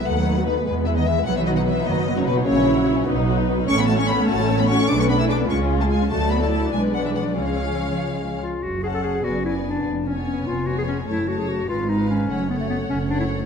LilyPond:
<<
  \new Staff \with { instrumentName = "Violin section" } { \time 6/8 \key b \mixolydian \tempo 4. = 99 fis''4 b'8 b'8 e''16 dis''16 e''8 | fis''16 e''16 dis''16 fis''16 e''8 dis''8. cis''16 b'8 | cis''4 r2 | \key fis \minor cis'''16 b''16 a''16 cis'''16 b''8 a''8. b''16 cis'''8 |
d'''16 cis'''16 b''16 e'''16 d'''8 cis'''8. a''16 gis''8 | a''8 b''16 a''16 a''8 gis''8 fis''16 e''16 fis''8 | eis''2~ eis''8 r8 | r8 a''4 gis''8 gis''4 |
r8 gis''4. gis''4 | a''8 a''4 f''8 f''4 | fis''8 fis''4. fis''4 | }
  \new Staff \with { instrumentName = "Clarinet" } { \time 6/8 \key b \mixolydian r2. | r2. | r2. | \key fis \minor r2. |
r2. | r2. | r2 r8 eis'8 | fis'8 gis'16 a'16 gis'8 fis'8 e'8 d'8~ |
d'8 cis'16 b16 cis'8 eis'8 fis'16 gis'16 cis'8 | e'8 fis'16 gis'16 fis'8 f'8 dis'8 cis'8~ | cis'8 b16 a16 b8 cis'8 d'16 e'16 r8 | }
  \new Staff \with { instrumentName = "Violin section" } { \time 6/8 \key b \mixolydian << { b'2. | b'2. | cis''4. b'4. | \key fis \minor cis''2. |
b'4. gis'4. | d''4. d''4. | cis''2~ cis''8 r8 | r8 fis''4 d''8 d''4 |
r8 cis''4. cis''4 | cis''8 cis''4 ces''8 ces''4 | cis''8 cis''4. cis''4 | } \\ { a16 b16 dis'16 fis'16 dis'16 b16 gis16 b16 e'16 b16 gis16 b16 | b16 dis'16 fis'16 dis'16 b16 dis'16 fis'16 dis'16 b16 dis'16 fis'16 dis'16 | ais16 cis'16 e'16 fis'16 e'16 cis'16 b16 dis'16 fis'16 dis'16 b16 dis'16 | a16 cis'16 fis'16 cis'16 a16 cis'16 fis'16 cis'16 a16 cis'16 fis'16 cis'16 |
gis16 b16 d'16 gis'16 d'16 b16 gis16 cis'16 eis'16 gis'16 eis'16 cis'16 | a'4. b'4. | gis'2~ gis'8 r8 | r2. |
r2. | r2. | r2. | } >> }
  \new Staff \with { instrumentName = "Viola section" } { \time 6/8 \key b \mixolydian << { b2. | b2. | e'4. dis'4. | \key fis \minor cis'2. |
d'4. eis'4. | fis'8. e'8. d'4. | cis'2~ cis'8 r8 | r2. |
r2. | r2. | r2. | } \\ { a4. gis4. | fis2.~ | fis2. | a2.~ |
a4. gis4. | fis4. gis4. | gis2~ gis8 r8 | r8 cis'4 b8 b4 |
r8 b4. b4 | a8 a4 aes8 aes4 | a8 a4. a4 | } >> }
  \new Staff \with { instrumentName = "Cello section" } { \clef bass \time 6/8 \key b \mixolydian fis4 b,8 b,8 e16 dis16 e8 | fis16 e16 dis16 fis16 e8 dis8. cis16 b,8 | cis4 r2 | \key fis \minor cis'16 b16 a16 cis'16 b8 a8. b16 cis'8 |
d'16 cis'16 b16 e'16 d'8 cis'8. a16 gis8 | a8 b16 a16 a8 gis8 fis16 e16 fis8 | eis2~ eis8 r8 | fis,4. fis,4. |
eis,4. eis,4. | fis,4. aes,4. | fis,4. fis,4. | }
  \new Staff \with { instrumentName = "Double bass section" } { \clef bass \time 6/8 \key b \mixolydian dis,4. e,4. | b,,4. fis,,4. | ais,,4. b,,4. | \key fis \minor a,,4. a,,4. |
b,,4. cis,4. | d,4. b,,4. | cis,2~ cis,8 r8 | fis,,4. fis,,4. |
eis,,4. eis,,4. | fis,,4. aes,,4. | fis,,4. fis,,4. | }
>>